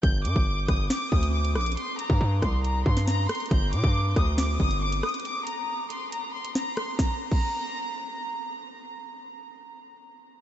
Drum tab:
CC |--------------------------------|--------------------------------|--------------------------------|--------------------------------|
HH |x---x-------x---x-----x---x-xxxx|x---x-------x---x-----x-----xxxx|x---x-------x---x-----x---x-xxxx|x---x-------x---x-----x-----x---|
SD |------------r---o-----------r---|------------r---------o-o---r---|------------r---o-----------r---|------------------------o---r---|
BD |o-----o-----o-------o-----------|------o-----o-------o-----------|o-----o-----o-------o-----------|--------------------------------|

CC |------x-------------------------|--------------------------------|
HH |--------------------------------|--------------------------------|
SD |o-------------------------------|--------------------------------|
BD |o-----o-------------------------|--------------------------------|